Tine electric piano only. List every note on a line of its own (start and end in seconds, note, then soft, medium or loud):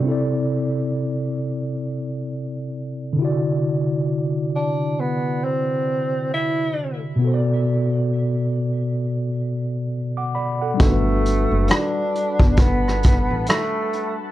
0.00 3.12 C3 medium
0.00 3.13 C4 medium
0.06 3.15 E4 medium
0.06 3.16 A4 medium
0.12 3.18 D5 medium
3.13 6.71 C3 medium
3.13 6.70 D3 medium
3.19 6.73 E4 medium
3.19 6.74 F#4 medium
3.25 6.76 D5 medium
7.16 10.73 B2 medium
7.16 10.74 B3 medium
7.22 10.76 F#4 medium
7.22 9.88 A4 medium
7.27 7.32 C5 medium
7.34 9.92 D5 medium
10.17 10.34 F#5 medium
10.17 10.34 D6 medium
10.35 10.61 D5 medium
10.35 10.60 B5 medium
10.61 10.82 A4 medium
10.61 11.04 F#5 medium
10.74 14.31 G3 medium
10.74 14.31 D4 medium
10.80 14.31 F#4 medium
10.80 14.31 A4 medium
10.86 14.31 B4 medium